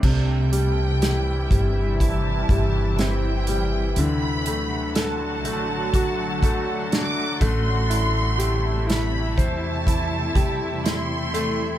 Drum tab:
CC |x-------|--------|--------|
HH |-xxxxxxx|xxxxxxxx|xxxxxxxx|
SD |--o---o-|--o---o-|--o---o-|
BD |o--ooo--|----oo-o|---ooo--|